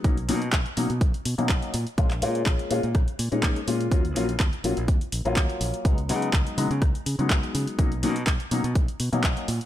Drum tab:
HH |xxoxxxoxxxoxxxox|xxoxxxoxxxoxxxox|xxoxxxoxxxoxxxox|xxoxxxoxxxoxxxox|
CP |----x-------x---|-x--x-------x---|----x-------x---|----x-------x---|
SD |----r-----------|----r---r---r---|----r-----------|----r---r---r---|
BD |o---o---o---o---|o---o---o---o---|o---o---o---o---|o---o---o---o---|

HH |xxoxxxoxxxoxxxox|
CP |----x-------x---|
SD |----r-----------|
BD |o---o---o---o---|